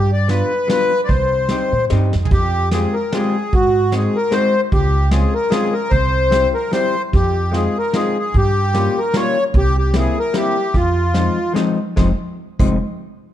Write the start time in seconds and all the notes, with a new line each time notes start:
Already playing: G2 G4
0.13 D5
0.28 G3 B3 D4 F4 B4, snare, closed hi-hat
0.68 G3 B3 D4 F4 B4, snare, closed hi-hat
1.04 C5 D5
1.09 C2, kick, closed hi-hat
1.49 G3 C4 D#4 G4, snare, closed hi-hat
1.72 A#2
1.90 G2 G3 C4 D#4 G4, snare, closed hi-hat
2.13 F2, snare
2.23 G#4, floor tom
2.31 F2 G4, kick, closed hi-hat
2.71 G#3 C4 F4 G4 G#4, snare, closed hi-hat
2.94 A#4
3.12 G#3 C4 F4 G4 G#4, snare, closed hi-hat
3.53 G#2 F#4, kick, closed hi-hat
3.92 G#3 C4 D#4 F#4, snare, closed hi-hat
3.97 G#4
4.16 A#4
4.31 G#3 C4 D#4 F#4 C5, snare, closed hi-hat
4.72 C#2 G4, kick, closed hi-hat
5.11 G#3 C4 C#4 F4 G#4, snare, closed hi-hat
5.34 A#4
5.50 G#3 C4 C#4 F4 G#4, snare, closed hi-hat
5.73 A#4
5.90 C2 C5, kick, closed hi-hat
6.30 G3 C4 E4 G4, snare, closed hi-hat
6.55 A#4
6.71 G3 C4 E4 G4 C5, snare, closed hi-hat
7.13 F2 G4, kick, closed hi-hat
7.52 G#3 C4 D#4 F4, snare, closed hi-hat
7.56 G#4
7.78 A#4
7.93 G#3 C4 D#4 F4 G#4, snare, closed hi-hat
8.19 G#4
8.34 G2 G4, kick, closed hi-hat
8.74 G3 A#3 C#4 F4, snare, closed hi-hat
8.98 A#4
9.14 G3 A#3 C#4 F4 C#5, snare, closed hi-hat
9.54 C2, kick, closed hi-hat
9.58 G4
9.78 G4
9.94 G3 A#3 C4 E4, snare, closed hi-hat
9.99 G#4
10.19 A#4
10.33 G3 A#3 C4 E4 G4, snare, closed hi-hat
10.74 F2 F4, kick, closed hi-hat
11.14 F3 G#3 C4 D#4, snare, closed hi-hat
11.53 F3 G#3 C4 D#4, snare, closed hi-hat
11.96 F1 F3 G#3 C4 D#4, kick, snare
12.59 F1 F3 G#3 C4 D#4, kick, crash